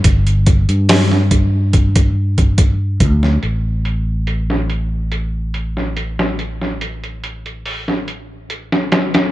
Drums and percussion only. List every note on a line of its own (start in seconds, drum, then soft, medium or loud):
0.04 kick loud
0.04 closed hi-hat medium
0.27 closed hi-hat soft
0.46 kick loud
0.46 closed hi-hat medium
0.69 closed hi-hat soft
0.89 snare loud
0.89 open hi-hat medium
1.11 snare soft
1.31 kick medium
1.31 closed hi-hat medium
1.73 kick medium
1.73 closed hi-hat medium
1.96 kick loud
1.96 closed hi-hat medium
2.38 kick medium
2.38 closed hi-hat medium
2.58 kick medium
2.58 closed hi-hat medium
3.00 kick medium
3.00 closed hi-hat medium
3.23 snare soft
3.43 closed hi-hat medium
3.85 closed hi-hat medium
4.27 closed hi-hat medium
4.50 snare soft
4.70 closed hi-hat medium
5.12 closed hi-hat medium
5.54 closed hi-hat medium
5.77 snare soft
5.97 closed hi-hat medium
6.19 snare soft
6.39 closed hi-hat medium
6.62 snare soft
6.81 closed hi-hat medium
7.04 closed hi-hat soft
7.24 closed hi-hat medium
7.46 closed hi-hat soft
7.66 open hi-hat medium
7.88 snare soft
8.08 closed hi-hat medium
8.50 closed hi-hat medium
8.72 snare soft
8.92 snare medium
8.92 closed hi-hat medium
9.14 snare medium
9.14 closed hi-hat medium